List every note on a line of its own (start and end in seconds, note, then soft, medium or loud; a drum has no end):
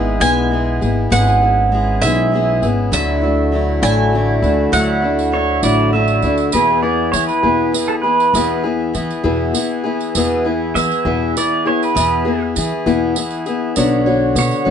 0.00 0.17 G#1 loud
0.00 0.21 G#3 medium
0.00 2.89 G#3 medium
0.00 0.20 B3 medium
0.00 1.10 B3 medium
0.00 0.20 E4 medium
0.00 6.50 E4 medium
0.00 0.19 G#4 medium
0.00 0.24 E5 medium
0.20 0.78 B1 medium
0.20 0.50 G#3 medium
0.20 0.51 B3 medium
0.20 0.51 E4 medium
0.20 0.51 G#4 medium
0.20 1.12 G#5 medium
0.20 tambourine medium
0.51 0.81 G#3 medium
0.51 0.82 B3 soft
0.51 0.82 E4 medium
0.51 0.80 G#4 medium
0.81 1.10 G#1 medium
0.81 1.10 B3 soft
0.81 1.11 E4 medium
0.81 1.12 G#4 medium
0.81 tambourine soft
1.10 1.98 G#1 loud
1.10 1.41 G#3 medium
1.10 1.42 B3 medium
1.10 2.91 C#4 medium
1.10 1.42 E4 medium
1.10 1.40 G#4 medium
1.10 2.05 F#5 medium
1.10 tambourine medium
1.27 tambourine soft
1.42 1.71 B3 soft
1.42 1.73 E4 soft
1.42 1.72 G#4 medium
1.72 2.02 G#3 medium
1.72 2.02 B3 medium
1.72 2.03 E4 medium
1.72 2.03 G#4 medium
2.02 2.59 B1 loud
2.02 2.31 G#3 medium
2.02 2.32 B3 medium
2.02 2.33 E4 medium
2.02 2.33 G#4 medium
2.02 2.66 E5 medium
2.02 tambourine medium
2.32 2.62 G#3 medium
2.32 2.63 B3 medium
2.32 2.62 E4 medium
2.32 2.61 G#4 medium
2.62 2.91 G#1 medium
2.62 2.92 B3 soft
2.62 2.93 E4 medium
2.62 2.92 G#4 soft
2.62 tambourine soft
2.92 3.79 D2 loud
2.92 3.22 D3 medium
2.92 6.50 D3 medium
2.92 3.22 F#3 medium
2.92 3.23 A3 medium
2.92 6.50 A3 medium
2.92 3.22 D4 medium
2.92 3.20 E4 medium
2.92 6.50 F#4 medium
2.92 3.86 E5 medium
2.92 tambourine loud
3.22 3.52 A3 soft
3.22 3.53 D4 medium
3.22 3.52 E4 medium
3.52 3.82 F#3 medium
3.52 3.82 A3 medium
3.52 3.81 D4 medium
3.52 3.80 E4 medium
3.82 4.40 A1 medium
3.82 4.14 D3 medium
3.82 4.11 F#3 medium
3.82 4.13 A3 medium
3.82 4.13 D4 medium
3.82 4.12 E4 medium
3.82 4.73 G#5 medium
3.82 tambourine medium
4.13 4.43 F#3 soft
4.13 4.44 A3 medium
4.13 4.43 D4 medium
4.13 4.41 E4 medium
4.42 4.71 D2 medium
4.42 4.72 A3 soft
4.42 4.72 D4 medium
4.42 4.73 E4 medium
4.42 tambourine soft
4.72 5.59 D2 medium
4.72 5.03 D3 medium
4.72 5.03 F#3 medium
4.72 5.03 A3 medium
4.72 5.03 D4 medium
4.72 5.01 E4 medium
4.72 6.20 F#5 medium
4.72 tambourine medium
5.02 5.32 A3 soft
5.02 5.33 D4 soft
5.02 5.33 E4 medium
5.19 tambourine soft
5.32 5.63 F#3 medium
5.32 5.62 A3 medium
5.32 5.62 D4 medium
5.32 5.62 E4 medium
5.32 5.63 C#5 medium
5.63 6.20 A1 medium
5.63 5.94 D3 medium
5.63 5.92 F#3 medium
5.63 5.93 A3 medium
5.63 5.93 D4 medium
5.63 5.93 E4 medium
5.63 5.93 D5 medium
5.63 tambourine medium
5.93 6.23 F#3 medium
5.93 6.24 A3 medium
5.93 6.24 D4 medium
5.93 6.22 E4 medium
5.93 6.49 E5 medium
6.08 tambourine soft
6.22 6.52 D2 medium
6.22 6.54 A3 medium
6.22 6.54 D4 medium
6.22 6.54 E4 medium
6.22 tambourine soft
6.38 tambourine soft
6.51 6.83 E2 medium
6.51 7.11 E2 medium
6.51 6.84 B2 medium
6.51 13.71 E3 medium
6.51 6.84 E3 medium
6.51 6.84 B3 medium
6.51 13.72 E4 medium
6.51 6.82 E4 medium
6.51 13.71 G#4 medium
6.51 10.10 B4 medium
6.51 6.82 B4 medium
6.51 tambourine medium
6.55 6.81 G#4 medium
6.82 7.12 E3 soft
6.82 7.13 B3 soft
6.82 7.14 E4 soft
6.82 7.13 G#4 medium
6.82 7.11 D5 medium
7.12 7.43 E3 medium
7.12 7.28 E3 medium
7.12 7.43 B3 medium
7.12 7.42 E4 soft
7.12 7.42 G#4 soft
7.12 7.27 C#5 loud
7.12 tambourine medium
7.27 7.90 B4 medium
7.27 tambourine soft
7.43 7.72 E2 medium
7.43 7.75 E2 soft
7.43 7.74 B2 soft
7.43 7.71 E3 medium
7.43 7.72 B3 medium
7.43 7.73 E4 medium
7.43 7.74 G#4 medium
7.72 8.03 E3 soft
7.72 8.04 B3 medium
7.72 8.03 E4 medium
7.72 8.02 G#4 medium
7.72 tambourine medium
7.88 7.93 A4 medium
8.02 8.34 E4 soft
8.02 8.34 G#4 medium
8.02 8.63 B4 medium
8.06 8.33 E3 soft
8.06 8.34 B3 soft
8.20 tambourine soft
8.34 8.91 E2 medium
8.34 8.64 E2 medium
8.34 8.64 B2 medium
8.34 8.64 E3 medium
8.34 8.64 B3 medium
8.34 8.63 E4 medium
8.34 8.62 G#4 medium
8.34 tambourine medium
8.63 8.92 E3 soft
8.63 8.93 B3 soft
8.63 8.94 E4 soft
8.63 8.94 G#4 soft
8.94 9.24 E3 medium
8.94 9.09 E3 medium
8.94 9.24 B3 medium
8.94 9.23 E4 medium
8.94 9.22 G#4 medium
8.94 tambourine medium
9.11 tambourine soft
9.23 9.53 E2 medium
9.23 9.55 E2 medium
9.23 9.55 B2 medium
9.23 9.52 E3 medium
9.23 9.54 B3 medium
9.23 9.54 E4 medium
9.23 9.54 G#4 medium
9.54 9.84 E3 medium
9.54 9.85 B3 medium
9.54 9.84 E4 medium
9.54 9.82 G#4 medium
9.54 tambourine medium
9.84 10.15 E3 soft
9.84 10.16 B3 medium
9.84 10.15 E4 medium
9.84 10.14 G#4 medium
10.01 tambourine soft
10.14 10.72 E2 medium
10.14 10.45 E2 medium
10.14 10.46 B2 medium
10.14 10.46 E3 medium
10.14 10.45 B3 medium
10.14 10.45 E4 medium
10.14 10.43 G#4 loud
10.14 13.72 B4 medium
10.14 tambourine loud
10.45 10.74 E3 soft
10.45 10.74 B3 soft
10.45 10.76 E4 medium
10.45 10.75 G#4 medium
10.75 11.05 E3 medium
10.75 10.89 E3 medium
10.75 11.05 B3 medium
10.75 11.05 E4 soft
10.75 11.04 G#4 medium
10.75 11.37 E5 loud
10.75 tambourine medium
10.91 tambourine soft
11.05 11.34 E2 medium
11.05 11.36 E2 medium
11.05 11.36 B2 medium
11.05 11.35 E3 soft
11.05 11.36 B3 medium
11.05 11.36 E4 medium
11.05 11.35 G#4 medium
11.37 11.66 E3 soft
11.37 11.66 B3 soft
11.37 11.65 E4 medium
11.37 11.64 G#4 medium
11.37 11.67 D5 medium
11.37 tambourine medium
11.65 11.94 E3 soft
11.65 11.95 B3 soft
11.65 11.95 E4 medium
11.65 11.95 G#4 medium
11.65 11.82 C#5 medium
11.83 12.42 B4 medium
11.83 tambourine soft
11.95 12.25 E2 medium
11.95 12.53 E2 medium
11.95 12.26 B2 medium
11.95 12.26 E3 medium
11.95 12.26 B3 medium
11.95 12.25 E4 medium
11.95 12.24 G#4 medium
11.95 tambourine loud
12.25 12.54 E3 soft
12.25 12.56 B3 soft
12.25 12.56 E4 soft
12.25 12.55 G#4 medium
12.55 12.86 E3 medium
12.55 12.70 E3 medium
12.55 12.86 B3 medium
12.55 12.85 E4 medium
12.55 12.85 G#4 medium
12.55 tambourine medium
12.86 13.15 E2 medium
12.86 13.17 E2 medium
12.86 13.17 B2 medium
12.86 13.14 E3 medium
12.86 13.16 B3 medium
12.86 13.16 E4 medium
12.86 13.16 G#4 medium
12.86 tambourine soft
13.16 13.46 E3 medium
13.16 13.47 B3 medium
13.16 13.46 E4 medium
13.16 13.45 G#4 medium
13.16 tambourine medium
13.31 tambourine soft
13.46 13.76 E3 soft
13.46 13.75 B3 medium
13.46 13.77 E4 medium
13.46 13.76 G#4 medium
13.46 tambourine soft
13.75 14.34 B1 medium
13.75 14.06 B2 medium
13.75 14.71 D3 medium
13.75 14.06 F#3 medium
13.75 14.71 B3 medium
13.75 14.06 B3 medium
13.75 14.07 D4 medium
13.75 14.06 F#4 medium
13.75 14.71 C#5 medium
13.75 14.05 C#5 medium
13.75 tambourine medium
14.06 14.34 B3 soft
14.06 14.36 D4 medium
14.06 14.37 F#4 medium
14.06 14.36 C#5 medium
14.35 14.50 B2 medium
14.35 14.65 B3 soft
14.35 14.65 D4 medium
14.35 14.65 F#4 medium
14.35 14.64 C#5 medium
14.35 14.71 C#5 loud
14.35 tambourine medium
14.51 tambourine soft
14.65 14.71 B1 medium
14.65 14.71 B2 soft
14.65 14.71 F#3 medium
14.65 14.71 B3 medium
14.65 14.71 D4 medium
14.65 14.71 F#4 medium
14.65 14.71 C#5 medium